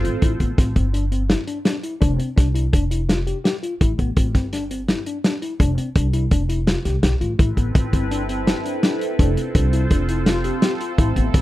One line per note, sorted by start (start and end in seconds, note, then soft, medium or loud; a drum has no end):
0.00 0.18 C4 medium
0.00 0.19 F4 medium
0.00 0.19 A4 medium
0.00 0.19 C5 medium
0.04 0.21 A1 medium
0.04 0.14 F4 medium
0.04 closed hi-hat medium
0.22 0.36 A1 medium
0.22 0.32 E4 medium
0.22 kick medium
0.22 closed hi-hat medium
0.40 0.54 A1 medium
0.40 0.50 B3 medium
0.40 kick medium
0.40 closed hi-hat soft
0.58 0.72 A1 medium
0.58 0.68 C4 medium
0.58 kick loud
0.58 snare soft
0.58 closed hi-hat medium
0.76 1.33 G1 medium
0.76 0.86 C4 medium
0.76 kick medium
0.76 closed hi-hat soft
0.94 1.04 D4 medium
0.94 closed hi-hat medium
1.12 1.22 C4 medium
1.12 closed hi-hat medium
1.29 1.40 E4 medium
1.29 snare medium
1.29 closed hi-hat medium
1.48 1.58 D4 medium
1.48 closed hi-hat medium
1.65 1.76 D4 medium
1.65 snare medium
1.65 closed hi-hat medium
1.83 1.94 E4 medium
1.83 closed hi-hat soft
2.01 2.16 F1 medium
2.01 2.11 D4 medium
2.01 kick medium
2.01 closed hi-hat medium
2.19 2.29 C4 medium
2.19 closed hi-hat medium
2.36 2.66 C2 medium
2.36 2.47 D4 medium
2.36 kick medium
2.36 snare soft
2.36 closed hi-hat medium
2.55 2.65 E4 medium
2.55 closed hi-hat medium
2.73 3.30 F1 medium
2.73 2.83 D4 medium
2.73 kick medium
2.73 closed hi-hat medium
2.91 3.01 E4 medium
2.91 closed hi-hat medium
3.09 3.19 F4 medium
3.09 snare medium
3.09 closed hi-hat medium
3.27 3.37 G4 medium
3.27 closed hi-hat medium
3.44 3.55 G4 medium
3.44 snare medium
3.44 closed hi-hat medium
3.63 3.73 F4 medium
3.63 closed hi-hat medium
3.81 3.95 A1 medium
3.81 3.91 E4 medium
3.81 kick medium
3.81 closed hi-hat medium
3.99 4.13 A1 medium
3.99 4.09 B3 medium
3.99 kick medium
3.99 closed hi-hat soft
4.17 4.31 A1 medium
4.17 4.27 C4 medium
4.17 kick medium
4.17 closed hi-hat medium
4.34 4.91 G1 medium
4.34 4.45 C4 medium
4.34 kick medium
4.34 snare soft
4.34 closed hi-hat soft
4.53 4.63 D4 medium
4.53 snare soft
4.53 closed hi-hat medium
4.71 4.81 C4 medium
4.71 closed hi-hat medium
4.88 4.99 E4 medium
4.88 snare medium
4.88 closed hi-hat medium
5.06 5.17 D4 medium
5.06 closed hi-hat medium
5.24 5.35 D4 medium
5.24 snare loud
5.24 closed hi-hat medium
5.42 5.52 E4 medium
5.42 closed hi-hat medium
5.60 5.74 F1 medium
5.60 5.70 D4 medium
5.60 kick medium
5.60 closed hi-hat medium
5.78 5.88 C4 medium
5.78 closed hi-hat medium
5.96 6.24 C2 medium
5.96 6.06 D4 medium
5.96 kick loud
5.96 closed hi-hat medium
6.13 6.24 E4 medium
6.13 closed hi-hat medium
6.31 6.74 F1 medium
6.31 6.42 D4 medium
6.31 kick medium
6.31 closed hi-hat medium
6.49 6.60 E4 medium
6.49 closed hi-hat medium
6.67 6.78 F4 medium
6.67 snare medium
6.67 closed hi-hat medium
6.85 7.02 C2 medium
6.85 6.96 G4 medium
6.85 snare soft
6.85 closed hi-hat medium
7.03 7.19 B1 medium
7.03 7.13 G4 medium
7.03 snare medium
7.03 closed hi-hat medium
7.21 7.37 A1 medium
7.21 7.31 F4 medium
7.21 closed hi-hat soft
7.38 7.54 A1 medium
7.38 9.15 C4 medium
7.38 9.15 E4 medium
7.38 7.49 E4 medium
7.38 9.15 A4 medium
7.38 9.16 B4 medium
7.38 kick medium
7.38 closed hi-hat medium
7.57 7.71 A1 medium
7.57 7.68 B3 medium
7.57 kick medium
7.57 closed hi-hat soft
7.75 7.89 A1 medium
7.75 7.85 C4 medium
7.75 kick loud
7.75 closed hi-hat medium
7.93 8.50 G1 medium
7.93 8.03 C4 medium
7.93 kick medium
7.93 closed hi-hat medium
8.11 8.21 D4 medium
8.11 closed hi-hat medium
8.29 8.40 C4 medium
8.29 closed hi-hat medium
8.47 8.57 E4 medium
8.47 snare medium
8.47 closed hi-hat medium
8.65 8.75 D4 medium
8.65 closed hi-hat medium
8.83 8.93 D4 medium
8.83 snare medium
8.83 closed hi-hat medium
9.01 9.11 E4 medium
9.01 closed hi-hat medium
9.18 9.33 F1 loud
9.18 10.94 C4 medium
9.18 9.29 D4 medium
9.18 10.95 F4 medium
9.18 10.95 A4 medium
9.18 10.96 C5 medium
9.18 kick medium
9.18 closed hi-hat medium
9.37 9.47 C4 medium
9.37 closed hi-hat medium
9.55 9.83 C2 medium
9.55 9.66 D4 medium
9.55 kick loud
9.55 closed hi-hat medium
9.73 9.83 E4 medium
9.73 closed hi-hat medium
9.91 10.48 F1 medium
9.91 10.02 D4 medium
9.91 kick medium
9.91 closed hi-hat medium
10.09 10.19 E4 medium
10.09 closed hi-hat medium
10.26 10.38 F4 medium
10.26 snare medium
10.26 closed hi-hat medium
10.44 10.55 G4 medium
10.44 closed hi-hat medium
10.62 10.73 G4 medium
10.62 snare loud
10.62 closed hi-hat medium
10.81 10.91 F4 medium
10.81 closed hi-hat soft
10.98 11.13 A1 medium
10.98 11.42 C4 medium
10.98 11.42 E4 medium
10.98 11.09 E4 medium
10.98 11.42 A4 medium
10.98 11.42 B4 medium
10.98 kick medium
10.98 closed hi-hat medium
11.16 11.31 A1 medium
11.16 11.27 B3 medium
11.16 kick medium
11.16 closed hi-hat soft
11.34 11.42 A1 medium
11.34 11.42 C4 medium
11.34 kick medium
11.34 snare soft
11.34 closed hi-hat medium